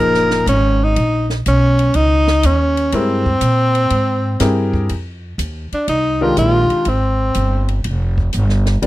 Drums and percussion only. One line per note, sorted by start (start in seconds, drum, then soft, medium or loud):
0.14 snare soft
0.31 snare soft
0.47 hi-hat pedal medium
0.47 ride medium
0.96 ride medium
1.30 snare soft
1.46 hi-hat pedal soft
1.46 ride medium
1.79 ride soft
1.94 ride medium
2.28 snare medium
2.43 hi-hat pedal medium
2.43 ride medium
2.77 ride medium
2.92 ride medium
3.26 kick medium
3.41 hi-hat pedal medium
3.41 ride medium
3.75 ride soft
3.90 ride medium
4.40 snare soft
4.40 hi-hat pedal medium
4.40 ride medium
4.74 kick medium
4.89 ride medium
5.39 hi-hat pedal medium
5.39 ride medium
5.72 ride soft
5.88 ride medium
6.37 hi-hat pedal medium
6.37 ride medium
6.70 ride soft
6.85 ride medium
7.34 hi-hat pedal medium
7.34 ride medium
7.68 ride soft
7.84 ride medium
8.18 kick medium
8.33 hi-hat pedal medium
8.33 ride medium
8.49 snare soft
8.66 snare soft
8.66 ride soft
8.82 ride medium